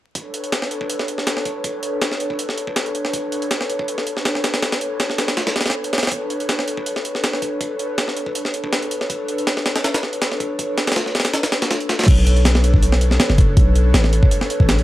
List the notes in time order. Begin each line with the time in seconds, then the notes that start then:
0.14 D4 A4 B4 C#5, kick, closed hi-hat
0.34 closed hi-hat
0.44 closed hi-hat
0.52 snare, closed hi-hat
0.62 snare
0.71 D4 A4 B4 C#5, closed hi-hat
0.81 kick
0.90 closed hi-hat
0.99 snare
1.08 D4 A4 B4 C#5, closed hi-hat
1.18 snare
1.27 snare, closed hi-hat
1.37 snare
1.45 kick, closed hi-hat
1.64 D4 A4 B4 C#5, kick, closed hi-hat
1.83 closed hi-hat
2.01 snare, closed hi-hat
2.11 snare
2.20 D4 A4 B4 C#5, closed hi-hat
2.30 kick
2.39 closed hi-hat
2.49 snare
2.58 D4 A4 B4 C#5, closed hi-hat
2.67 kick
2.76 snare, closed hi-hat
2.86 closed hi-hat
2.95 closed hi-hat
3.05 snare
3.13 D4 A4 B4 C#5, kick, closed hi-hat
3.32 closed hi-hat
3.42 closed hi-hat
3.51 snare, closed hi-hat
3.61 snare
3.69 D4 A4 B4 C#5, closed hi-hat
3.79 kick
3.88 closed hi-hat
3.98 snare
4.06 D4 A4 B4 C#5, closed hi-hat
4.17 snare
4.25 snare, closed hi-hat
4.35 snare
4.44 snare, closed hi-hat
4.54 snare, closed hi-hat
4.62 D4 A4 B4 C#5, snare, closed hi-hat
4.72 snare, closed hi-hat
4.81 closed hi-hat
5.00 snare, closed hi-hat
5.10 snare
5.18 D4 A4 B4 C#5, snare, closed hi-hat
5.28 snare, closed hi-hat
5.37 snare, closed hi-hat
5.47 snare, closed hi-hat
5.56 D4 A4 B4 C#5, snare, closed hi-hat
5.61 snare, closed hi-hat
5.66 snare, closed hi-hat
5.70 snare, closed hi-hat
5.84 closed hi-hat
5.93 snare, closed hi-hat
5.98 snare, closed hi-hat
6.03 snare, closed hi-hat
6.07 snare, closed hi-hat
6.12 D4 A4 B4 C#5, kick, closed hi-hat
6.30 closed hi-hat
6.40 closed hi-hat
6.49 snare, closed hi-hat
6.59 snare
6.67 D4 A4 B4 C#5, closed hi-hat
6.77 kick
6.86 closed hi-hat
6.96 snare
7.05 D4 A4 B4 C#5, closed hi-hat
7.15 snare
7.24 snare, closed hi-hat
7.33 snare
7.42 kick, closed hi-hat
7.61 D4 A4 B4 C#5, kick, closed hi-hat
7.79 closed hi-hat
7.98 snare, closed hi-hat
8.08 snare
8.16 D4 A4 B4 C#5, closed hi-hat
8.26 kick
8.35 closed hi-hat
8.45 snare
8.54 D4 A4 B4 C#5, closed hi-hat
8.64 kick
8.73 snare, closed hi-hat
8.82 closed hi-hat
8.91 closed hi-hat
9.01 snare
9.10 D4 A4 B4 C#5, kick, closed hi-hat
9.28 closed hi-hat
9.38 closed hi-hat
9.47 snare, closed hi-hat
9.57 snare
9.66 D4 A4 B4 C#5, snare, closed hi-hat
9.76 snare, closed hi-hat
9.84 snare, closed hi-hat
9.94 snare, closed hi-hat
10.03 D4 A4 B4 C#5, snare
10.13 closed hi-hat
10.22 snare, closed hi-hat
10.32 snare
10.40 kick, closed hi-hat
10.59 D4 A4 B4 C#5, kick, closed hi-hat
10.78 snare, closed hi-hat
10.87 snare, closed hi-hat
10.92 snare, closed hi-hat
10.96 snare, closed hi-hat
11.06 snare
11.15 D4 A4 B4 C#5, snare, closed hi-hat
11.20 snare, closed hi-hat
11.25 snare, closed hi-hat
11.33 snare, closed hi-hat
11.43 snare, closed hi-hat
11.52 snare, closed hi-hat
11.62 snare, closed hi-hat
11.71 snare, closed hi-hat
11.80 closed hi-hat
11.89 snare, closed hi-hat
11.99 snare, closed hi-hat
12.04 snare, closed hi-hat
12.08 B1 D4 A4 B4 C#5, kick, closed hi-hat, crash
12.27 closed hi-hat
12.36 closed hi-hat
12.45 snare, closed hi-hat
12.55 snare
12.64 D4 A4 B4 C#5, closed hi-hat
12.74 kick
12.82 closed hi-hat
12.92 snare
13.01 closed hi-hat
13.11 snare
13.20 snare, closed hi-hat
13.30 F#1, snare
13.38 kick, closed hi-hat
13.56 B1 D4 A4 B4 C#5, kick, closed hi-hat
13.76 closed hi-hat
13.94 A1, snare, closed hi-hat
14.04 snare
14.13 D4 A4 B4 C#5, closed hi-hat
14.23 kick
14.31 closed hi-hat
14.41 snare
14.50 closed hi-hat
14.60 A1, kick
14.69 snare, closed hi-hat
14.79 closed hi-hat